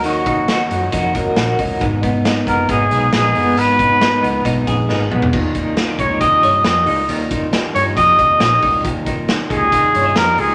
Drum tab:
CC |----------------|----------------|----------------|x---------------|
HH |x-x-x-x-x-x-x-o-|x-x-x-x-x-x-x-o-|x-x-x-x-x-x-----|--x-x-x-x-x-x-o-|
SD |----o-------o---|----o-------o---|----o-------o---|----o-------o---|
T2 |----------------|----------------|--------------o-|----------------|
FT |----------------|----------------|---------------o|----------------|
BD |--o-----o-o---o-|o-o---o-o-------|--o-----o-o-----|o-o---o-o-------|

CC |----------------|----------------|
HH |x-x-x-x-x-x-x-o-|x-x-x-x-x-x-x-o-|
SD |----o-------o---|----o-------o---|
T2 |----------------|----------------|
FT |----------------|----------------|
BD |--o-----o-o---o-|o-o---o-o-------|